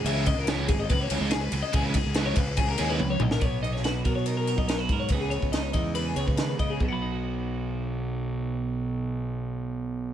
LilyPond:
<<
  \new Staff \with { instrumentName = "Clean electric guitar" } { \time 4/4 \key b \major \tempo 4 = 142 e''8 dis''16 ais'16 b'8 gis'16 dis''16 b'16 cis''8 dis''16 gis'16 b'8 dis''16 | gis'16 b'16 gis'8 b'16 cis''16 b'8 gis'16 ais'16 gis'16 b'8 cis''16 dis''16 ais'16 | cis''8 dis''16 cis''16 b'8 ais'16 cis''16 ais'16 ais'8 dis''16 ais'16 b'8 cis''16 | b'16 gis'16 cis''8 dis''16 cis''16 dis''8 b'16 gis'16 cis''16 b'8 b'16 dis''16 gis'16 |
<dis'' fis'' b''>1~ | <dis'' fis'' b''>1 | }
  \new Staff \with { instrumentName = "Clean electric guitar" } { \time 4/4 \key b \major << { r1 | r1 | r8 dis'8 fis'4 dis'8 ais'8 dis'16 fis'16 ais'8 | <gis b dis' gis'>8 b8 dis'4 b8 gis'4. |
<fis dis' fis'>1~ | <fis dis' fis'>1 | } \\ { r1 | r1 | b,4. fis2~ fis8 | cis4. gis4. dis8 cis8 |
b,1~ | b,1 | } >> }
  \new Staff \with { instrumentName = "Overdriven electric guitar" } { \clef bass \time 4/4 \key b \major <cis e gis cis'>8 r8 <cis e gis cis'>8 r4 <cis e gis cis'>8 r4 | <cis e gis cis'>8 r8 <cis e gis cis'>8 r4 <cis e gis cis'>8 r4 | r1 | r1 |
r1 | r1 | }
  \new Staff \with { instrumentName = "Fingered electric bass" } { \clef bass \time 4/4 \key b \major cis,8. cis,8. gis,,8 cis,8 cis,16 cis,8. cis,16 r16 | cis,8. cis,8. cis,4 dis,8 cis,8 b,,8 | b,,4. b,4~ b,16 b,,8. gis,8 | cis,8. cis,8. e,4 cis,16 cis8. cis8 |
b,,1~ | b,,1 | }
  \new DrumStaff \with { instrumentName = "Drums" } \drummode { \time 4/4 cymr8 <bd cymr>8 <cymr sn>8 <bd cymr>8 <bd cymr>8 cymr8 <cymr sn>8 cymr8 | <bd cymr>8 <bd cymr>8 <cymr sn>8 <bd cymr>8 <bd cymr>8 cymr8 tommh8 toml16 sn16 | <bd cymr>8 cymr16 sn16 <cymr sn>8 <bd cymr>8 cymr8 cymr16 bd16 <cymr sn>8 <bd cymr>8 | <bd cymr>8 cymr16 bd16 <cymr sn>8 <bd cymr>8 cymr8 cymr16 bd16 <cymr sn>8 <bd cymr>8 |
bd4 r4 r4 r4 | r4 r4 r4 r4 | }
>>